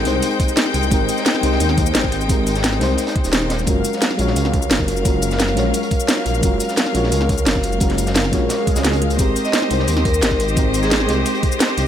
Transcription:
Already playing: G#3 C4 D#4 G4 A#4 C5 G5, downlifter
0.03 C2 G#3 C4 D#4 G4, snare, closed hi-hat
0.08 C5
0.22 closed hi-hat, cabasa
0.31 closed hi-hat
0.40 kick, closed hi-hat
0.48 cabasa
0.56 snare, closed hi-hat, cabasa
0.66 snare
0.74 C2, closed hi-hat
0.83 cabasa
0.89 G#1 G#3 C4 D#4 G4, kick, closed hi-hat, cabasa
0.94 A#4
1.09 closed hi-hat, cabasa
1.17 snare, cabasa
1.25 snare, closed hi-hat, cabasa
1.35 snare
1.41 C2 G#3 C4 D#4 G4, closed hi-hat
1.45 C5
1.52 snare
1.60 D#2, closed hi-hat, cabasa
1.69 snare
1.78 kick, closed hi-hat
1.86 cabasa
1.95 G#1, snare, closed hi-hat, cabasa
2.03 kick, snare
2.12 closed hi-hat
2.21 cabasa
2.27 G#3 C4 D#4 G4, kick, closed hi-hat, cabasa
2.32 A#4
2.47 closed hi-hat, cabasa
2.55 snare, closed hi-hat, cabasa
2.63 snare, closed hi-hat, cabasa
2.73 snare
2.79 C2 G#3 C4 D#4 G4, snare, closed hi-hat
2.83 C5
2.98 snare, closed hi-hat, cabasa
3.07 snare, closed hi-hat
3.16 kick, closed hi-hat
3.24 D#1, snare, closed hi-hat, cabasa
3.33 snare, closed hi-hat, cabasa
3.42 snare
3.50 snare, closed hi-hat
3.59 cabasa
3.65 F#1 F#3 G#3 C#4 F4 F#4 A#4 F5, kick, closed hi-hat, cabasa
3.69 A#4
3.85 closed hi-hat, cabasa
3.93 snare, cabasa
4.02 snare, closed hi-hat, cabasa
4.11 snare
4.17 A#1 G#3 C#4 F4 F#4, closed hi-hat
4.21 C#5
4.27 snare
4.36 C#2, closed hi-hat, cabasa
4.45 snare
4.53 kick, closed hi-hat
4.62 cabasa
4.70 F#1, snare, closed hi-hat, cabasa
4.79 kick, snare
4.88 closed hi-hat
4.97 cabasa
5.03 G#3 C#4 F4 F#4, kick, closed hi-hat, cabasa
5.07 A#4
5.22 closed hi-hat, cabasa
5.31 snare, cabasa
5.39 snare, closed hi-hat, cabasa
5.48 snare
5.55 A#1 G#3 C#4 F4 F#4, snare, closed hi-hat
5.59 C#5
5.74 closed hi-hat, cabasa
5.83 closed hi-hat
5.91 kick, closed hi-hat
6.00 cabasa
6.08 snare, closed hi-hat, cabasa
6.17 snare
6.26 A#1, closed hi-hat
6.34 cabasa
6.41 F#1 G#3 C#4 F4 F#4, kick, closed hi-hat, cabasa
6.45 A#4
6.60 closed hi-hat, cabasa
6.68 snare, cabasa
6.77 snare, closed hi-hat, cabasa
6.86 snare
6.93 A#1 G#3 C#4 F4 F#4, closed hi-hat
6.97 C#5
7.03 snare
7.12 C#2, closed hi-hat, cabasa
7.21 snare
7.29 kick, closed hi-hat
7.38 cabasa
7.46 F#1, snare, closed hi-hat, cabasa
7.55 kick, snare
7.63 closed hi-hat
7.73 cabasa
7.79 G#3 C#4 F4 F#4, kick, closed hi-hat, cabasa
7.83 A#4
7.90 snare, closed hi-hat
7.98 closed hi-hat, cabasa
8.06 snare, closed hi-hat, cabasa
8.15 snare, closed hi-hat, cabasa
8.24 snare
8.30 A#1 G#3 C#4 F4 F#4, kick, snare, closed hi-hat
8.35 C#5
8.49 snare, closed hi-hat, swell, cabasa
8.67 kick, closed hi-hat, cabasa
8.76 C#2, snare, closed hi-hat, cabasa
8.85 snare, closed hi-hat, cabasa
8.93 snare, closed hi-hat
9.02 closed hi-hat
9.10 closed hi-hat, cabasa
9.17 G#1 G#3 C4 D#4 G4 C5 D#5, kick, closed hi-hat, cabasa
9.21 A#4
9.36 closed hi-hat, cabasa
9.45 D#5, snare, cabasa
9.53 snare, closed hi-hat, cabasa
9.62 snare
9.68 C2 G#3 C4 D#4 G4, closed hi-hat
9.73 C5
9.79 snare
9.88 D#2, closed hi-hat, cabasa
9.97 snare
10.05 A#4, kick, closed hi-hat
10.14 cabasa
10.22 G#1, snare, closed hi-hat, cabasa
10.31 kick, snare
10.40 closed hi-hat
10.48 cabasa
10.55 G#3 C4 D#4 G4, kick, closed hi-hat, cabasa
10.59 A#4
10.74 closed hi-hat, cabasa
10.83 G#4, snare, cabasa
10.91 snare, closed hi-hat, cabasa
11.00 snare
11.06 C2 G#3 C4 D#4 G4, snare, closed hi-hat
11.11 C5
11.26 closed hi-hat, cabasa
11.34 closed hi-hat
11.43 kick, closed hi-hat
11.52 cabasa
11.60 snare, closed hi-hat, cabasa
11.69 snare
11.77 C2, closed hi-hat

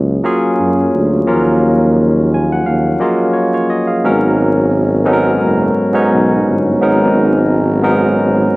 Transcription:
Already playing: C#2 F#3 A#3 C#4 F4 G#4
0.24 F#3 A#3 C#4 F4 G#4
0.60 F#2
0.94 D2
1.26 D#2 F3 A#3 C#4 F4 A#4
1.33 F#3
2.34 G#5
2.52 F#5
2.66 D#2 F5
3.00 F#3 A#3 C#4 F4 G#4 D#5
3.33 C#5
3.54 F4 C#5
3.70 F#4 D#5
3.88 G#4 F5
4.04 G#1 G#2 F#3 B3 C#4 D#4 A#4
5.04 G#2 F#3 B3 C#4 D#4 A4
5.13 A#4
5.42 F#1
5.93 G#2 F#3 B3 C#4 D#4 C#5
6.11 B1
6.46 G1
6.81 G#1 G#2 F#3 B3 C#4 D#4 A#4
7.82 G#2 F#3 B3 C#4 D#4 A#4
8.18 G#1

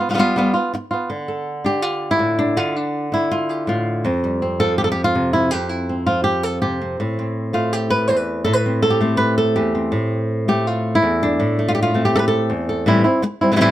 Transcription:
0.01 B3
0.09 G3 B3 F4
0.14 G3 B3 F4
0.18 G3 B3 F4
0.36 G3 B3 F4
0.54 B3 F4
0.74 muted nylon-string guitar stroke
0.91 B3 F4
1.10 D3
1.28 A4
1.64 D4 G4
1.82 F4
2.11 E4
2.19 A2
2.39 D4
2.57 D3 F4
2.76 D4
3.12 D4 E4
3.31 F4
3.49 G4
3.67 A2 F4
4.05 F2 C4
4.24 G3
4.42 C4
4.60 F3 A4
4.78 G4
4.84 A4
4.92 G4
5.04 F4
5.15 C3
5.33 E4
5.51 F2 G4
5.69 E4
5.89 C4
6.06 F3 F4
6.24 G4
6.43 A4
6.62 C3 G4
6.81 C4
7.00 A2
7.19 C4
7.53 A3 F4
7.73 G4
7.90 B4
8.08 E2 C5
8.16 B4
8.44 A2 A4
8.53 B4
8.66 C4
8.82 A4
8.90 G4
9.00 A3 C4
9.17 B4
9.38 A4
9.56 E2 G4
9.75 C4
9.92 A2
10.48 A3 G4
10.67 F4
10.95 E4
11.02 E2
11.23 D4
11.40 A2
11.59 A3
11.68 F4
11.75 G4
11.83 F4
11.94 A3 C4
12.05 G4
12.16 A4 B4
12.28 A4
12.50 E2
12.69 A4
12.86 A2 E3 G3 C4 E4
13.04 G3 C4 E4
13.22 muted nylon-string guitar stroke
13.41 G3 C4 E4
13.52 E3 G3 C4 E4
13.56 E3 G3 C4 E4
13.61 A2 E3 G3 C4 E4

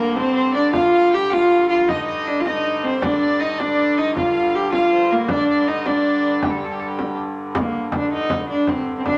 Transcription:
Already playing: G2 D3 A#3 A#4
0.16 C4 C5, frame drum
0.36 C5
0.54 D4 D5
0.73 F4 F5, frame drum
0.93 F5
1.13 G4 G5, frame drum
1.31 F4 F5, frame drum
1.69 F4 F5
1.88 D#4 D#5, frame drum
2.07 D#5
2.27 D4
2.40 F4
2.46 D#4 D#5, frame drum
2.84 C4 C5
3.00 G2 D3 D4 D5, frame drum
3.21 D5
3.40 D#4 D#5, frame drum
3.59 D4 D5, frame drum
3.98 D#4 D#5
4.17 F4 F5, frame drum
4.54 G4, frame drum
4.73 F4 F5, frame drum
4.93 C5
5.11 A#3 A#4
5.28 D4 D5, frame drum
5.50 D5
5.67 D#4 D#5, frame drum
5.86 D4 D5, frame drum
6.43 G3 G4, frame drum
6.50 A4
6.58 G4
6.65 A4
6.72 G4
6.80 A4, frame drum
6.87 G4
6.99 frame drum
7.18 frame drum
7.55 G2 D3 A#3, frame drum
7.74 frame drum
7.92 D4, frame drum
8.12 D#4, frame drum
8.30 frame drum
8.50 D4
8.67 C4, frame drum
8.98 C4
9.06 D4, frame drum

